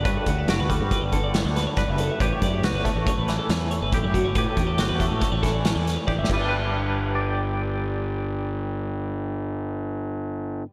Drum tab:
CC |------------------------------|------------------------------|---------------------------x--|------------------------------|
HH |x--x--x--x--x--x--x--x--x--x--|x--x--x--x--x--x--x--x--x--x--|x--x--x--x--x--x--x--x--------|------------------------------|
SD |------o-----------o--o--o-----|------o--------o--o-----------|------o-----o--o--o--o----o---|------------------------------|
BD |o--o-----o--o--o--------o-----|o--o-----o--o-----------o--o--|o--o-----o--o--o--------o--o--|------------------------------|

CC |------------------------------|
HH |------------------------------|
SD |------------------------------|
BD |------------------------------|